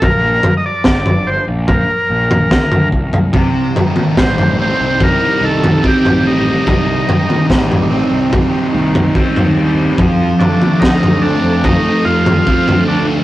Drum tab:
SD |----o-------o---|----o-----------|----o-----------|----o-----------|
T2 |-----------ooo--|---o-------o----|---o-------o----|---o-------o----|
FT |o-o--o--o--o-o-o|o-o--o--o--o-o--|o-o--o--o--o-o--|o-o--o--o--o-o--|
BD |o---o---o---o-o-|o---o---o---o---|o---o---o---o---|o---o---o---o---|